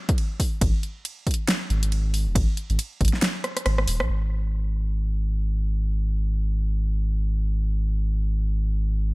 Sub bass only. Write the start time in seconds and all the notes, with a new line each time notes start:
0.61 G#1
1.70 G#1
2.26 D#1
2.35 G#1
2.70 G#1
3.01 G#1
3.66 G#1
3.88 D#1
4.00 B1
4.09 G#1